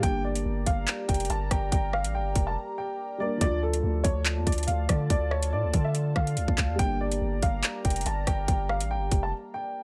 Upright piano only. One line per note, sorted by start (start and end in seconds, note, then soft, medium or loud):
0.03 0.21 G5 loud
0.24 0.64 D5 medium
0.66 0.85 F5 medium
1.08 1.27 G5 medium
1.30 1.48 A5 medium
1.51 1.69 G5 medium
1.72 1.90 G5 medium
1.93 2.11 F5 medium
2.15 2.45 G5 medium
2.47 2.55 A5 medium
2.78 3.18 G5 medium
3.20 3.38 D5 medium
3.41 3.59 D5 loud
3.63 4.02 A4 medium
4.04 4.22 C#5 medium
4.46 4.65 D5 medium
4.67 4.86 F5 medium
4.89 5.07 D5 medium
5.11 5.29 D5 medium
5.31 5.49 C#5 medium
5.53 5.83 D5 medium
5.84 5.93 E5 medium
6.16 6.75 F5 medium
6.79 6.97 G5 loud
7.01 7.40 D5 medium
7.42 7.61 F5 medium
7.85 8.03 G5 medium
8.06 8.24 A5 medium
8.27 8.45 G5 medium
8.48 8.66 G5 medium
8.69 8.87 F5 medium
8.91 9.21 G5 medium
9.23 9.31 A5 medium
9.54 9.83 G5 medium